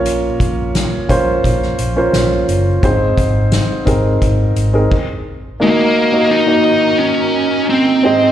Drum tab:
CC |----------------|------------x---|----------------|
HH |x-x-x-x-x-x-x-x-|x-x-x-x-x-x-----|----------------|
SD |----o----o--o---|----o-----------|----------------|
BD |--o---o-o-------|o-o---o-o---o---|----------------|